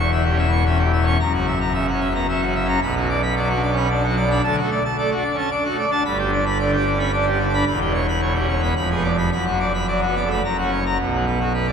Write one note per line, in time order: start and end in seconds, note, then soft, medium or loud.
0.00 1.16 E1 medium
0.00 1.16 E2 medium
0.00 0.11 C#6 medium
0.12 0.28 E3 medium
0.12 0.24 E5 medium
0.25 0.37 G4 medium
0.30 0.46 C#4 medium
0.39 0.51 E5 medium
0.48 0.63 B3 soft
0.52 0.64 C#6 medium
0.66 0.82 C#4 medium
0.66 0.78 E5 medium
0.79 0.92 G4 medium
0.84 1.00 E3 medium
0.93 1.05 E5 medium
1.02 1.17 C#4 medium
1.07 1.18 C#6 medium
1.20 2.78 F#1 medium
1.20 2.78 F#2 medium
1.20 1.32 A#5 medium
1.34 1.46 F#4 medium
1.38 1.54 C#3 medium
1.47 1.59 E5 medium
1.61 1.73 A#5 medium
1.74 1.90 C#3 medium
1.74 1.86 E5 medium
1.88 2.00 F#4 medium
1.92 2.08 C#4 medium
2.01 2.13 E5 medium
2.10 2.26 B3 medium
2.15 2.27 A#5 medium
2.29 2.45 C#4 medium
2.29 2.41 E5 medium
2.42 2.54 F#4 medium
2.46 2.62 C#3 medium
2.55 2.67 E5 medium
2.64 2.80 C#4 medium
2.68 2.80 A#5 medium
2.82 4.40 B1 medium
2.82 4.40 B2 medium
2.82 2.94 B5 loud
2.96 3.08 F#4 medium
3.00 3.16 F#3 medium
3.09 3.21 D5 medium
3.22 3.35 B5 medium
3.36 3.52 F#3 medium
3.36 3.48 D5 medium
3.50 3.62 F#4 medium
3.54 3.70 D4 medium
3.63 3.75 D5 medium
3.72 3.87 C#4 medium
3.77 3.89 B5 medium
3.90 4.06 D4 medium
3.90 4.02 D5 medium
4.04 4.16 F#4 medium
4.08 4.24 F#3 medium
4.17 4.29 D5 medium
4.26 4.42 D4 medium
4.31 4.42 B5 medium
4.44 4.59 D2 medium
4.44 4.59 D3 medium
4.44 4.56 A5 loud
4.58 4.70 F#4 medium
4.63 4.78 A3 medium
4.72 4.83 D5 medium
4.85 4.97 A5 medium
4.98 5.14 A3 medium
4.98 5.10 D5 medium
5.12 5.23 F#4 medium
5.16 5.32 D4 medium
5.24 5.36 D5 medium
5.34 5.49 C#4 medium
5.38 5.50 A5 medium
5.51 5.68 D4 medium
5.51 5.63 D5 medium
5.65 5.77 F#4 medium
5.70 5.86 A3 medium
5.79 5.91 D5 medium
5.88 6.03 D4 medium
5.92 6.03 A5 medium
6.05 7.63 G1 loud
6.05 7.63 G2 medium
6.05 6.17 B5 loud
6.19 6.31 G4 medium
6.23 6.39 D3 medium
6.33 6.45 D5 medium
6.46 6.58 B5 medium
6.60 6.75 D3 medium
6.60 6.71 D5 medium
6.73 6.85 G4 medium
6.78 6.93 D4 medium
6.87 6.98 D5 medium
6.95 7.10 C#4 medium
7.00 7.12 B5 medium
7.13 7.29 D4 medium
7.13 7.25 D5 medium
7.26 7.38 G4 medium
7.31 7.47 D3 medium
7.40 7.52 D5 medium
7.49 7.64 D4 medium
7.54 7.65 B5 medium
7.67 8.73 E1 medium
7.67 7.79 B5 loud
7.81 7.93 G4 medium
7.85 8.01 B2 medium
7.95 8.06 C#5 medium
8.08 8.20 B5 medium
8.22 8.38 B2 medium
8.22 8.34 C#5 medium
8.35 8.47 G4 medium
8.40 8.56 C#4 medium
8.49 8.61 C#5 medium
8.59 8.74 B3 medium
8.63 8.74 B5 medium
8.77 9.31 F1 medium
8.77 9.31 F2 medium
8.77 8.89 B5 medium
8.91 9.03 G#4 medium
8.95 9.11 B3 medium
9.04 9.16 D5 medium
9.18 9.30 B5 medium
9.32 10.40 F#2 medium
9.32 9.44 B5 medium
9.46 9.59 F#4 medium
9.50 9.67 F#3 medium
9.60 9.72 D5 medium
9.74 9.86 B5 medium
9.88 10.05 F#3 medium
9.88 10.00 D5 medium
10.02 10.15 F#4 medium
10.07 10.24 B3 medium
10.17 10.29 D5 medium
10.25 10.41 A3 medium
10.31 10.42 B5 medium
10.45 10.98 F#1 medium
10.45 10.98 F#2 medium
10.45 10.57 A#5 medium
10.58 10.70 F#4 medium
10.63 10.79 C#4 medium
10.72 10.84 C#5 medium
10.86 10.98 A#5 medium
10.99 11.72 B1 medium
10.99 11.72 B2 medium
11.14 11.26 F#3 medium
11.27 11.39 B3 medium
11.40 11.52 F#4 medium
11.54 11.66 B4 medium
11.67 11.72 D5 medium